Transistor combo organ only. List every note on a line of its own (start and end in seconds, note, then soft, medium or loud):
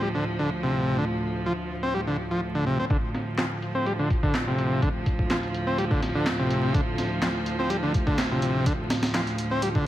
0.02 0.09 G3 medium
0.15 0.25 D3 medium
0.39 0.50 D3 medium
0.63 0.97 C3 medium
0.98 1.05 D3 medium
1.46 1.53 F3 medium
1.83 1.94 C4 medium
1.95 2.01 G3 loud
2.07 2.17 D3 medium
2.31 2.41 F3 medium
2.55 2.65 D3 medium
2.66 2.78 C3 loud
2.79 2.85 C4 medium
2.91 2.97 D3 medium
3.38 3.45 F3 loud
3.75 3.86 C4 medium
3.86 3.93 G3 medium
3.99 4.09 D3 medium
4.23 4.34 D3 medium
4.47 4.81 C3 medium
4.82 4.89 D3 loud
5.30 5.37 F3 loud
5.67 5.78 C4 medium
5.78 5.85 G3 medium
5.91 6.01 D3 medium
6.15 6.26 D3 loud
6.39 6.73 C3 medium
6.74 6.81 D3 loud
7.22 7.29 F3 loud
7.59 7.70 C4 medium
7.70 7.77 G3 loud
7.83 7.93 D3 medium
8.07 8.18 D3 loud
8.31 8.65 C3 medium
8.66 8.73 D3 loud
9.15 9.21 F3 loud
9.51 9.62 C4 medium
9.63 9.69 G3 loud
9.75 9.85 D3 medium